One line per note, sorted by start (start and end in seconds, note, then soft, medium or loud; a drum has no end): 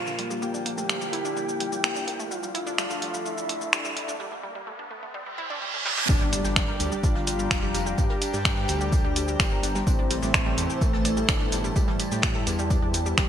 0.00 0.63 A#2 medium
0.00 4.16 D3 medium
0.00 0.63 F3 medium
0.00 0.63 A#3 medium
0.00 2.27 A#3 medium
0.00 0.33 F4 loud
0.00 0.40 F4 loud
0.00 0.33 F5 medium
0.00 riser medium
0.07 0.16 D3 medium
0.07 shaker medium
0.19 0.24 G3 medium
0.19 closed hi-hat medium
0.30 0.42 G3 medium
0.30 shaker medium
0.42 0.47 A#3 medium
0.42 2.29 E4 medium
0.42 2.33 G4 loud
0.42 2.32 G5 loud
0.42 shaker medium
0.54 0.63 D4 medium
0.54 shaker medium
0.66 2.30 A#2 medium
0.66 2.30 F3 medium
0.66 0.75 A#3 medium
0.66 2.30 A#3 medium
0.66 closed hi-hat loud
0.78 0.89 A3 medium
0.78 shaker medium
0.89 0.95 G3 medium
0.89 finger snap loud
0.89 shaker medium
1.01 1.12 G3 medium
1.01 shaker medium
1.13 1.18 E4 loud
1.13 closed hi-hat medium
1.25 1.34 D4 loud
1.25 shaker medium
1.37 1.46 G3 loud
1.37 shaker medium
1.49 1.57 D3 medium
1.49 shaker medium
1.60 1.66 G3 medium
1.60 closed hi-hat loud
1.72 1.83 G3 medium
1.72 shaker medium
1.84 1.89 A#3 medium
1.84 finger snap loud
1.84 shaker medium
1.96 2.05 D4 medium
1.96 shaker medium
2.07 2.16 A#3 medium
2.07 closed hi-hat medium
2.19 2.31 A3 medium
2.19 shaker medium
2.31 4.18 F3 loud
2.31 2.36 G3 medium
2.31 4.18 A3 medium
2.31 3.27 F4 loud
2.31 3.27 F5 loud
2.31 shaker medium
2.43 2.54 G3 medium
2.43 shaker medium
2.55 4.20 D3 medium
2.55 4.20 A3 medium
2.55 4.20 D4 medium
2.55 2.60 E4 loud
2.55 closed hi-hat loud
2.67 2.75 D4 loud
2.67 shaker medium
2.78 2.87 G3 loud
2.78 finger snap loud
2.78 shaker medium
2.90 2.99 D3 medium
2.90 shaker medium
3.02 3.07 G3 medium
3.02 closed hi-hat medium
3.14 3.25 G3 medium
3.14 shaker medium
3.25 3.31 A3 medium
3.25 4.20 E4 loud
3.25 4.20 E5 loud
3.25 shaker medium
3.37 3.46 D4 medium
3.37 shaker medium
3.49 3.58 A3 medium
3.49 closed hi-hat loud
3.61 3.72 A3 medium
3.61 shaker medium
3.73 3.78 G3 medium
3.73 finger snap loud
3.73 shaker medium
3.85 3.96 G3 medium
3.85 shaker medium
3.96 4.02 E4 loud
3.96 closed hi-hat medium
4.08 4.17 D4 loud
4.08 shaker medium
4.20 4.29 G3 loud
4.32 4.41 D3 medium
4.43 4.49 G3 medium
4.55 4.67 G3 medium
4.67 4.73 A3 medium
4.79 4.88 D4 medium
4.91 5.00 A3 medium
5.03 5.14 A3 medium
5.14 5.20 G3 medium
5.14 reverse cymbal medium
5.26 5.38 G3 medium
5.38 5.43 E4 loud
5.50 5.59 D4 loud
5.62 5.71 G3 loud
5.74 5.82 D3 medium
5.85 5.91 G3 medium
5.85 snare medium
5.97 6.08 G3 medium
5.97 snare medium
6.09 6.41 G1 loud
6.09 6.20 G3 medium
6.09 6.94 D4 loud
6.09 6.20 G4 medium
6.09 9.83 G4 medium
6.09 6.94 D5 loud
6.09 7.96 D5 medium
6.09 9.83 A#5 loud
6.09 kick loud
6.09 tambourine medium
6.09 impact medium
6.09 shaker medium
6.21 6.31 G3 loud
6.21 6.31 G4 medium
6.33 6.42 G3 medium
6.33 8.19 G3 medium
6.33 8.19 D4 medium
6.33 6.42 G4 medium
6.33 8.19 G4 medium
6.33 closed hi-hat loud
6.33 open hi-hat medium
6.33 shaker medium
6.44 6.77 G1 medium
6.44 6.53 G4 medium
6.44 6.53 G5 medium
6.44 snare soft
6.44 shaker medium
6.56 6.68 F3 medium
6.56 6.68 F4 medium
6.56 finger snap loud
6.56 kick loud
6.56 snare loud
6.56 tambourine medium
6.56 shaker medium
6.68 6.79 A#4 medium
6.68 6.79 A#5 medium
6.80 6.90 D2 loud
6.80 6.85 D4 medium
6.80 6.85 D5 medium
6.80 closed hi-hat medium
6.80 tambourine medium
6.80 shaker medium
6.92 7.01 G3 medium
6.92 7.01 G4 medium
6.92 closed hi-hat soft
6.92 shaker medium
7.04 7.13 D4 loud
7.04 7.99 F4 loud
7.04 7.13 D5 medium
7.04 7.99 F5 loud
7.04 kick loud
7.04 tambourine medium
7.04 shaker medium
7.15 7.48 G1 medium
7.15 7.21 D4 medium
7.15 7.21 D5 medium
7.15 snare soft
7.27 7.38 G3 medium
7.27 7.38 G4 medium
7.27 closed hi-hat loud
7.27 tambourine medium
7.27 shaker medium
7.39 7.50 G3 medium
7.39 7.50 G4 medium
7.39 shaker medium
7.51 7.70 F1 medium
7.51 7.61 G3 medium
7.51 7.62 G4 medium
7.51 finger snap loud
7.51 kick loud
7.51 snare loud
7.51 tambourine medium
7.51 shaker medium
7.63 7.73 G3 loud
7.63 7.73 G4 medium
7.74 7.94 F1 medium
7.74 7.83 G3 medium
7.74 7.83 G4 medium
7.74 snare soft
7.74 closed hi-hat medium
7.74 tambourine medium
7.74 shaker medium
7.86 7.95 G4 medium
7.86 7.95 G5 medium
7.86 closed hi-hat soft
7.86 shaker medium
7.98 8.08 G2 medium
7.98 8.09 F3 medium
7.98 8.09 F4 medium
7.98 9.78 G4 loud
7.98 13.29 C5 medium
7.98 9.78 G5 loud
7.98 kick loud
7.98 tambourine medium
7.98 shaker medium
8.09 8.21 A#4 medium
8.09 8.21 A#5 medium
8.09 snare soft
8.22 9.86 G3 medium
8.22 9.86 D4 medium
8.22 8.27 D4 medium
8.22 9.86 G4 medium
8.22 8.27 D5 medium
8.22 closed hi-hat loud
8.22 tambourine medium
8.22 shaker medium
8.34 8.66 G2 medium
8.34 8.42 G3 medium
8.34 8.42 G4 medium
8.34 snare soft
8.34 shaker medium
8.45 8.54 D4 loud
8.45 8.54 D5 medium
8.45 finger snap loud
8.45 kick loud
8.45 snare loud
8.45 tambourine medium
8.45 shaker medium
8.57 8.62 D4 medium
8.57 8.62 D5 medium
8.68 9.01 D2 loud
8.68 8.80 G3 medium
8.68 8.80 G4 medium
8.68 closed hi-hat loud
8.68 tambourine medium
8.68 shaker medium
8.81 8.91 G3 medium
8.81 8.91 G4 medium
8.81 closed hi-hat soft
8.81 shaker medium
8.92 9.03 G3 medium
8.92 9.03 G4 medium
8.92 kick loud
8.92 tambourine loud
8.92 shaker medium
9.04 9.37 D2 medium
9.04 9.15 G3 loud
9.04 9.15 G4 medium
9.16 9.25 G3 medium
9.16 9.25 G4 medium
9.16 closed hi-hat loud
9.16 tambourine medium
9.16 shaker medium
9.28 9.37 G4 medium
9.28 9.37 G5 medium
9.28 shaker medium
9.40 9.59 G1 loud
9.40 9.51 F3 medium
9.40 9.51 F4 medium
9.40 finger snap loud
9.40 kick loud
9.40 snare loud
9.40 tambourine medium
9.40 shaker medium
9.52 9.63 A#4 medium
9.52 9.63 A#5 medium
9.63 9.83 G1 medium
9.63 9.69 D4 medium
9.63 9.69 D5 medium
9.63 closed hi-hat loud
9.63 tambourine medium
9.63 shaker medium
9.75 9.84 G3 medium
9.75 9.84 G4 medium
9.75 snare medium
9.75 shaker medium
9.87 10.19 A1 loud
9.87 10.83 C4 loud
9.87 9.96 D4 loud
9.87 13.29 E4 medium
9.87 10.83 C5 loud
9.87 9.96 D5 medium
9.87 13.29 A5 loud
9.87 kick loud
9.87 tambourine medium
9.87 shaker medium
9.99 10.04 D4 medium
9.99 10.04 D5 medium
10.11 11.97 A2 medium
10.11 11.97 E3 medium
10.11 10.21 G3 medium
10.11 11.97 A3 medium
10.11 10.21 G4 medium
10.11 closed hi-hat loud
10.11 open hi-hat medium
10.11 shaker medium
10.22 10.55 A1 medium
10.22 10.33 G3 medium
10.22 10.33 G4 medium
10.22 snare soft
10.22 shaker medium
10.34 10.45 G3 medium
10.34 10.45 G4 medium
10.34 finger snap loud
10.34 kick loud
10.34 snare loud
10.34 tambourine medium
10.34 shaker medium
10.46 10.57 G3 loud
10.46 10.57 G4 medium
10.58 10.68 E2 loud
10.58 10.67 G3 medium
10.58 10.67 G4 medium
10.58 closed hi-hat loud
10.58 tambourine medium
10.58 shaker medium
10.70 10.79 G4 medium
10.70 10.79 G5 medium
10.70 closed hi-hat soft
10.70 shaker medium
10.81 10.93 E3 medium
10.81 11.77 A3 loud
10.81 10.93 E4 medium
10.81 11.77 A4 loud
10.81 kick loud
10.81 tambourine medium
10.81 shaker medium
10.93 11.25 A1 medium
10.93 11.04 A4 medium
10.93 11.04 A5 medium
10.93 snare soft
11.05 11.10 D4 medium
11.05 11.10 D5 medium
11.05 closed hi-hat loud
11.05 tambourine medium
11.05 shaker medium
11.17 11.26 G3 medium
11.17 11.26 G4 medium
11.17 shaker medium
11.29 11.48 G1 medium
11.29 11.38 D4 loud
11.29 11.38 D5 medium
11.29 finger snap loud
11.29 kick loud
11.29 snare loud
11.29 tambourine medium
11.29 shaker medium
11.41 11.46 D4 medium
11.41 11.46 D5 medium
11.52 11.72 G1 medium
11.52 11.63 G3 medium
11.52 11.63 G4 medium
11.52 snare soft
11.52 closed hi-hat medium
11.52 tambourine medium
11.52 shaker medium
11.64 11.75 G3 medium
11.64 11.75 G4 medium
11.64 closed hi-hat soft
11.64 shaker medium
11.76 11.86 A2 medium
11.76 11.87 G3 medium
11.76 13.29 G3 loud
11.76 11.87 G4 medium
11.76 13.29 G4 loud
11.76 kick loud
11.76 tambourine medium
11.76 shaker medium
11.88 11.98 G3 loud
11.88 11.98 G4 medium
11.88 snare soft
12.00 12.09 G3 medium
12.00 12.09 G4 medium
12.00 closed hi-hat loud
12.00 tambourine medium
12.00 shaker medium
12.12 12.44 A2 medium
12.12 12.20 G4 medium
12.12 12.20 G5 medium
12.12 snare soft
12.12 shaker medium
12.22 12.35 E3 medium
12.22 12.35 E4 medium
12.22 finger snap loud
12.22 kick loud
12.22 snare loud
12.22 tambourine medium
12.22 shaker medium
12.35 12.46 A4 medium
12.35 12.46 A5 medium
12.47 12.79 E2 loud
12.47 12.52 D4 medium
12.47 12.52 D5 medium
12.47 closed hi-hat loud
12.47 tambourine medium
12.47 shaker medium
12.59 12.68 G3 medium
12.59 12.68 G4 medium
12.59 closed hi-hat soft
12.59 shaker medium
12.70 12.79 D4 loud
12.70 12.79 D5 medium
12.70 kick loud
12.70 tambourine medium
12.70 shaker medium
12.82 13.14 E2 medium
12.82 12.88 D4 medium
12.82 12.88 D5 medium
12.93 13.05 G3 medium
12.93 13.05 G4 medium
12.93 closed hi-hat loud
12.93 tambourine medium
12.93 shaker medium
13.06 13.17 G3 medium
13.06 13.16 G4 medium
13.06 shaker medium
13.17 13.29 A1 medium
13.17 13.29 G3 medium
13.17 13.29 G4 medium
13.17 finger snap loud
13.17 kick loud
13.17 snare loud
13.17 tambourine medium
13.17 shaker medium